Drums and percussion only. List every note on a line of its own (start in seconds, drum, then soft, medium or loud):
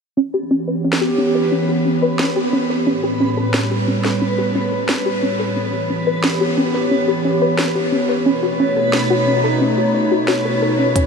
0.93 snare loud
2.19 snare loud
3.54 snare loud
4.05 snare medium
4.89 snare loud
6.24 snare loud
7.59 snare loud
8.93 snare loud
10.28 snare loud
10.96 kick loud
10.96 closed hi-hat medium